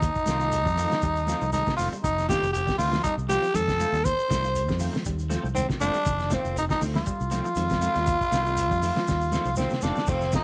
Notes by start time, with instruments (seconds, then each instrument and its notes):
0.00 tenor saxophone D#4, trombone D#4, kick, closed hi-hat, high conga, low conga, shekere
0.15 kick, shekere
0.26 fingered electric bass C2, clean electric guitar D#3 A3 C4 F4, snare, closed hi-hat, high conga, shekere
0.40 clean electric guitar A3 F4, snare, shekere
0.52 closed hi-hat, high conga, shekere
0.66 fingered electric bass F2, clean electric guitar G3, kick, shekere
0.76 clean electric guitar D#3 A3 C4 F4, open hi-hat, low conga, shekere
0.90 clean electric guitar F3, snare, high conga, shekere
1.02 fingered electric bass D#2, clean electric guitar G3, kick, snare, closed hi-hat, high conga, shekere
1.16 closed hi-hat, shekere
1.27 clean electric guitar D#3 F3 A3 C4 F4, snare, closed hi-hat, high conga, shekere
1.42 fingered electric bass C2, clean electric guitar F3, shekere
1.52 clean electric guitar D#3, trombone D#4, tenor saxophone D#4, closed hi-hat, high conga, shekere
1.66 clean electric guitar C3, kick, snare, high conga, shekere
1.77 fingered electric bass F1, clean electric guitar D#3 A3 C4 F4, tenor saxophone F4, trombone F4, open hi-hat, high conga, shekere
1.81 snare
1.93 clean electric guitar G3, closed hi-hat, shekere
2.02 fingered electric bass F1, trombone D#4, tenor saxophone D#4, kick, closed hi-hat, high conga, low conga, shekere
2.18 snare, shekere
2.28 clean electric guitar D#3 A3 C4 F4, trombone G4, tenor saxophone G4, kick, snare, closed hi-hat, high conga, shekere
2.42 fingered electric bass F1, closed hi-hat, shekere
2.52 tenor saxophone G4, trombone G4, closed hi-hat, high conga, shekere
2.66 clean electric guitar G3, kick, snare, shekere
2.78 fingered electric bass D2, clean electric guitar D#3 A3 C4 F4, tenor saxophone F4, trombone F4, open hi-hat, low conga, shekere
2.92 clean electric guitar F3, snare, high conga, shekere
3.03 clean electric guitar G3, tenor saxophone D#4, trombone D#4, kick, snare, closed hi-hat, high conga, shekere
3.18 fingered electric bass C2, shekere
3.28 clean electric guitar D#3 F3 C4 F4, trombone G4, tenor saxophone G4, snare, closed hi-hat, high conga, shekere
3.42 clean electric guitar F3, shekere
3.53 fingered electric bass F2, clean electric guitar D#3, trombone A4, tenor saxophone A4, closed hi-hat, high conga, shekere
3.68 clean electric guitar C3, kick, snare, closed hi-hat, shekere
3.79 clean electric guitar D#3 A3 C4 F4, closed hi-hat, high conga, shekere
3.92 fingered electric bass D#2, clean electric guitar G3, closed hi-hat, shekere
4.04 tenor saxophone C5, trombone C5, kick, closed hi-hat, high conga, low conga, shekere
4.19 shekere
4.28 fingered electric bass C2, clean electric guitar D#3 A3 C4 F4, kick, snare, closed hi-hat, high conga, shekere
4.44 snare, shekere
4.55 closed hi-hat, high conga, shekere
4.68 fingered electric bass F2, clean electric guitar G3, kick, snare, shekere
4.79 clean electric guitar D#3 A3 C4 F4, open hi-hat, low conga, shekere
4.93 clean electric guitar F3, snare, high conga, shekere
5.05 fingered electric bass D#2, clean electric guitar G3, kick, closed hi-hat, shekere
5.19 closed hi-hat, shekere
5.29 clean electric guitar F3 A3 C4 F4, snare, closed hi-hat, high conga, shekere
5.43 fingered electric bass C2, clean electric guitar F3, shekere
5.55 clean electric guitar D#3, tenor saxophone C4, trombone C4, closed hi-hat, high conga, shekere
5.69 clean electric guitar C3, kick, snare, shekere
5.80 fingered electric bass F1, clean electric guitar D#3 A3 C4 F4, trombone D4, tenor saxophone D4, snare, closed hi-hat, high conga, shekere
5.94 clean electric guitar G3, muted fingered electric bass stroke, closed hi-hat, shekere
6.06 fingered electric bass F1, kick, closed hi-hat, high conga, low conga, shekere
6.19 snare, shekere
6.29 clean electric guitar D#3 A3 C4 F4, trombone C4, kick, snare, closed hi-hat, high conga, shekere
6.33 tenor saxophone C4
6.42 fingered electric bass F1, clean electric guitar A3 C4 F4, closed hi-hat, shekere
6.57 trombone D#4, tenor saxophone D#4, closed hi-hat, high conga, shekere
6.69 clean electric guitar G3, tenor saxophone D#4, kick, snare, shekere
6.73 trombone D#4
6.80 fingered electric bass D2, clean electric guitar D#3 A3 C4 F4, open hi-hat, low conga, shekere
6.94 clean electric guitar F3, tenor saxophone F4, trombone F4, snare, high conga, shekere
7.06 clean electric guitar G3, kick, closed hi-hat, high conga, shekere
7.21 fingered electric bass C2, shekere
7.30 clean electric guitar D#3 F3 A3 C4 F4, snare, closed hi-hat, high conga, shekere
7.45 clean electric guitar F3, shekere
7.56 fingered electric bass F2, clean electric guitar D#3, closed hi-hat, high conga, shekere
7.69 clean electric guitar C3, kick, snare, closed hi-hat, high conga, shekere
7.81 clean electric guitar D#3 A3 C4 F4, closed hi-hat, high conga, shekere
7.95 fingered electric bass D#2, clean electric guitar G3, snare, closed hi-hat, shekere
8.06 kick, closed hi-hat, high conga, low conga, shekere
8.21 kick, shekere
8.31 fingered electric bass C2, clean electric guitar D#3 A3 C4 F4, snare, closed hi-hat, high conga, shekere
8.46 clean electric guitar A3 C4 F4, shekere
8.57 closed hi-hat, high conga, shekere
8.71 fingered electric bass F2, clean electric guitar G3, kick, shekere
8.82 clean electric guitar D#3 A3 C4 F4, open hi-hat, low conga, shekere
8.95 clean electric guitar F3, snare, high conga, shekere
9.07 fingered electric bass D#2, clean electric guitar G3, kick, snare, high conga, shekere
9.21 shekere
9.32 clean electric guitar D#3 F3 A3 C4 F4, snare, high conga, shekere
9.45 fingered electric bass C2, clean electric guitar F3, shekere
9.56 clean electric guitar D#3 A3 C4 F4, tenor saxophone C4, trombone C4, snare, high conga, shekere
9.70 clean electric guitar C3, snare, high conga, shekere
9.81 fingered electric bass F1, clean electric guitar D#3 A3 C4 F4, tenor saxophone D4, trombone D4, snare, high conga, shekere
9.95 clean electric guitar G3, snare, shekere
10.07 fingered electric bass F1, clean electric guitar D#3 A3 C4 F4, tenor saxophone C4, trombone C4, kick, crash, high conga, low conga, shekere
10.21 snare, shekere
10.32 clean electric guitar D#3 A3 C4 F4, trombone D#4, tenor saxophone D#4, kick, snare, ride bell, high conga, shekere